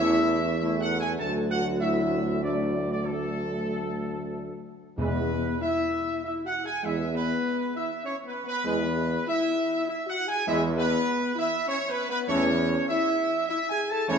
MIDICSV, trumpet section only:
0, 0, Header, 1, 2, 480
1, 0, Start_track
1, 0, Tempo, 611621
1, 942, Time_signature, 3, 2, 24, 8
1, 1911, Tempo, 633580
1, 4791, Tempo, 604839
1, 11098, End_track
2, 0, Start_track
2, 0, Title_t, "Trumpet section"
2, 0, Program_c, 0, 61
2, 0, Note_on_c, 0, 76, 127
2, 433, Note_off_c, 0, 76, 0
2, 465, Note_on_c, 0, 76, 103
2, 614, Note_off_c, 0, 76, 0
2, 634, Note_on_c, 0, 78, 117
2, 777, Note_off_c, 0, 78, 0
2, 791, Note_on_c, 0, 80, 120
2, 860, Note_off_c, 0, 80, 0
2, 937, Note_on_c, 0, 81, 111
2, 1045, Note_off_c, 0, 81, 0
2, 1184, Note_on_c, 0, 78, 122
2, 1292, Note_off_c, 0, 78, 0
2, 1420, Note_on_c, 0, 76, 106
2, 1878, Note_off_c, 0, 76, 0
2, 1909, Note_on_c, 0, 74, 86
2, 2242, Note_off_c, 0, 74, 0
2, 2273, Note_on_c, 0, 74, 91
2, 2380, Note_on_c, 0, 69, 103
2, 2383, Note_off_c, 0, 74, 0
2, 3595, Note_off_c, 0, 69, 0
2, 3847, Note_on_c, 0, 71, 107
2, 4294, Note_off_c, 0, 71, 0
2, 4322, Note_on_c, 0, 76, 112
2, 4759, Note_off_c, 0, 76, 0
2, 4795, Note_on_c, 0, 76, 100
2, 4866, Note_off_c, 0, 76, 0
2, 4962, Note_on_c, 0, 78, 112
2, 5106, Note_off_c, 0, 78, 0
2, 5125, Note_on_c, 0, 80, 115
2, 5267, Note_off_c, 0, 80, 0
2, 5268, Note_on_c, 0, 76, 109
2, 5508, Note_off_c, 0, 76, 0
2, 5519, Note_on_c, 0, 71, 109
2, 5962, Note_off_c, 0, 71, 0
2, 5997, Note_on_c, 0, 76, 103
2, 6217, Note_off_c, 0, 76, 0
2, 6235, Note_on_c, 0, 73, 108
2, 6305, Note_off_c, 0, 73, 0
2, 6405, Note_on_c, 0, 71, 91
2, 6545, Note_off_c, 0, 71, 0
2, 6566, Note_on_c, 0, 71, 124
2, 6706, Note_off_c, 0, 71, 0
2, 6718, Note_on_c, 0, 71, 116
2, 7175, Note_off_c, 0, 71, 0
2, 7206, Note_on_c, 0, 76, 127
2, 7652, Note_off_c, 0, 76, 0
2, 7683, Note_on_c, 0, 76, 98
2, 7830, Note_off_c, 0, 76, 0
2, 7851, Note_on_c, 0, 78, 127
2, 7993, Note_off_c, 0, 78, 0
2, 8006, Note_on_c, 0, 80, 127
2, 8149, Note_off_c, 0, 80, 0
2, 8158, Note_on_c, 0, 76, 125
2, 8265, Note_off_c, 0, 76, 0
2, 8396, Note_on_c, 0, 71, 127
2, 8844, Note_off_c, 0, 71, 0
2, 8879, Note_on_c, 0, 76, 127
2, 9100, Note_off_c, 0, 76, 0
2, 9110, Note_on_c, 0, 73, 121
2, 9261, Note_off_c, 0, 73, 0
2, 9281, Note_on_c, 0, 71, 127
2, 9430, Note_off_c, 0, 71, 0
2, 9440, Note_on_c, 0, 71, 127
2, 9510, Note_off_c, 0, 71, 0
2, 9584, Note_on_c, 0, 73, 127
2, 10033, Note_off_c, 0, 73, 0
2, 10066, Note_on_c, 0, 76, 127
2, 10517, Note_off_c, 0, 76, 0
2, 10540, Note_on_c, 0, 76, 127
2, 10694, Note_off_c, 0, 76, 0
2, 10710, Note_on_c, 0, 80, 127
2, 10859, Note_off_c, 0, 80, 0
2, 10874, Note_on_c, 0, 81, 127
2, 11019, Note_on_c, 0, 73, 127
2, 11033, Note_off_c, 0, 81, 0
2, 11098, Note_off_c, 0, 73, 0
2, 11098, End_track
0, 0, End_of_file